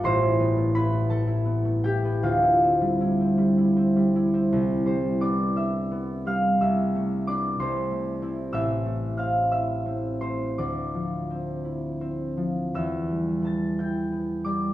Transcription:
X:1
M:6/8
L:1/16
Q:3/8=57
K:C
V:1 name="Harp"
[cec'e']4 [Bb]2 [Aa]4 [Gg]2 | [Ff]12 | z2 [cc']2 [dd']2 [ee']4 [ff']2 | [ee']4 [dd']2 [cc']6 |
[ee']4 [ff']2 [ee']4 [cc']2 | [dd']12 | [ee']4 [aa']2 [gg']4 [dd']2 |]
V:2 name="Harp"
[A,,,A,,A,B,A] E B, A, E B, A, E B, A, E B, | D,, E C G, E C G, E C G, E C | C,,2 G,2 B,2 D2 B,2 G,2 | C,,2 A,2 [B,D]2 C,,2 A,2 [CE]2 |
A,,,2 A,2 C2 E2 C2 A,2 | D,,2 F,2 C2 E2 C2 F,2 | E,,2 G,2 B,2 E2 B,2 G,2 |]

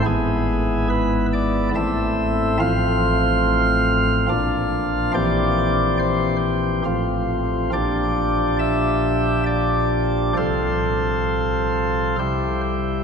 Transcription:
X:1
M:3/4
L:1/8
Q:1/4=70
K:Am
V:1 name="Pipe organ"
^G2 B d e2 | [K:F] f6 | d2 c z3 | d2 e2 d2 |
c4- c z |]
V:2 name="Pipe organ" clef=bass
[^G,,,^G,,B,E]4 [A,,,A,,A,CE]2 | [K:F] [A,,,A,,F,CF]4 [B,,,B,,F,DF]2 | [B,,,B,,E,CG]4 [A,,,A,,F,CF]2 | [B,,,B,,F,DG]6 |
[C,,C,F,FA]4 [C,,C,G,EG]2 |]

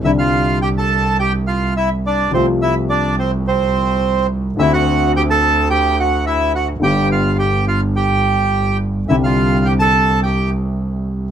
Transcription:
X:1
M:4/4
L:1/16
Q:1/4=106
K:Gmix
V:1 name="Bandoneon"
[Ee] [Ff]3 [Gg] [Aa]3 [Gg]2 [Ff]2 [Ee]2 [Dd]2 | [Cc]2 [Ee]2 [Dd]2 [Cc]2 [Cc]6 z2 | [Ee] [^F^f]3 [Gg] [Aa]3 [Gg]2 [Ff]2 [Ee]2 [Ff]2 | [Gg]2 [Ff]2 [Gg]2 [Ff]2 [Gg]6 z2 |
[Ee] [Ff]3 [Gg] [Aa]3 [Gg]2 z6 |]
V:2 name="Grand piano" clef=bass
[C,,C,D,G,D]16 | [C,,C,F,A,F]16 | [D,,D,A,C^F]16 | [G,,,G,,D,G,B,G]16 |
[C,,C,D,CDG]16 |]
V:3 name="Double bass" clef=bass
C,,16 | C,,16 | D,,16 | G,,,16 |
C,,16 |]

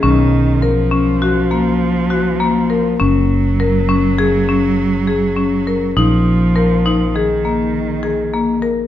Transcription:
X:1
M:5/4
L:1/8
Q:1/4=101
K:Gb
V:1 name="Marimba"
^C2 ^A C ^F ^A,2 F A, A | D2 B D A D2 A D B | E2 B E A B,2 A B, B |]
V:2 name="Cello" clef=bass
^D,2 ^E,8 | G,8- G,2 | F,4 E,4- E, z |]
V:3 name="Fretless electric bass" clef=bass
=B,,,8- B,,,2 | G,,,8- G,,,2 | B,,,8- B,,,2 |]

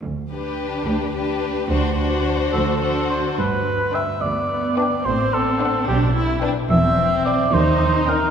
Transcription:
X:1
M:6/8
L:1/8
Q:3/8=72
K:G
V:1 name="Violin section"
z B3 B2 | c c3 c2 | z2 g z2 g | z2 f z2 g |
z2 g z2 g |]
V:2 name="Cor anglais"
z6 | z3 A2 c | B2 e d2 d | c A2 G z2 |
e2 d c2 _B |]
V:3 name="Violin section"
z G3 G2 | F F3 F2 | z2 [DB] z2 [DB] | z2 [Dc] z2 [DB] |
z2 [Cc] z2 [_D_B] |]
V:4 name="Viola section"
z D3 D2 | D D3 D2 | z3 B,3 | C3 D E D |
C3 _E3 |]
V:5 name="Cello section" clef=bass
D,,3 D,,3 | D,,3 D,,3 | G,,3 D,,3 | A,,3 B,,3 |
E,,3 _E,,3 |]
V:6 name="Double bass section" clef=bass
D,,3 D,,3 | D,,3 D,,3 | G,,,2 z4 | A,,,2 z B,,,2 z |
E,,,2 z _E,,2 z |]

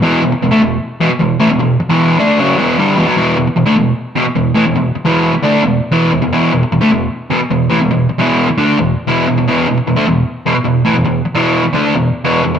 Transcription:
X:1
M:4/4
L:1/16
Q:1/4=152
K:Clyd
V:1 name="Overdriven electric guitar" clef=bass
[E,,B,,E,]2 [E,,B,,] z [E,,B,,] [D,A,] [E,,B,,]2 z2 [E,,B,,] z [E,,B,,]2 [A,,E,] [E,,B,,] | [E,,B,,]2 z [E,,B,,E,]3 [D,A,D]2 [F,,^C,F,]2 [E,,B,,E,]2 [G,,D,G,]2 [E,,B,,] [B,,F,] | [E,,B,,E,]2 [E,,B,,] z [E,,B,,] [D,A,] [E,,B,,]2 z2 [E,,B,,] z [E,,B,,]2 [A,,E,] [E,,B,,] | [E,,B,,]2 z [E,,B,,E,]3 z [D,A,D]2 [E,,B,,]2 z [E,,B,,E,]2 [E,,B,,] [E,,B,,] |
[E,,B,,E,]2 [E,,B,,] z [E,,B,,] [D,A,] [E,,B,,]2 z2 [E,,B,,] z [E,,B,,]2 [A,,E,] [E,,B,,] | [E,,B,,]2 z [E,,B,,E,]3 z [D,A,D]2 [E,,B,,]2 z [E,,B,,E,]2 [E,,B,,] [E,,B,,] | [E,,B,,E,]2 [E,,B,,] z [E,,B,,] [D,A,] [E,,B,,]2 z2 [E,,B,,] z [E,,B,,]2 [A,,E,] [E,,B,,] | [E,,B,,]2 z [E,,B,,E,]3 z [D,A,D]2 [E,,B,,]2 z [E,,B,,E,]2 [E,,B,,] [E,,B,,] |]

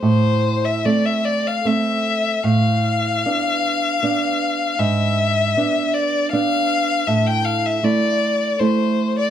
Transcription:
X:1
M:3/4
L:1/16
Q:1/4=78
K:Am
V:1 name="Violin"
c3 e d e d f e4 | f12 | e6 d2 f4 | e g f e d4 c3 d |]
V:2 name="Nylon-string guitar"
A,,4 [A,C]4 [A,C]4 | A,,4 [B,D]4 [B,D]4 | ^G,,4 [B,D]4 [B,D]4 | A,,4 [A,E]4 [A,E]4 |]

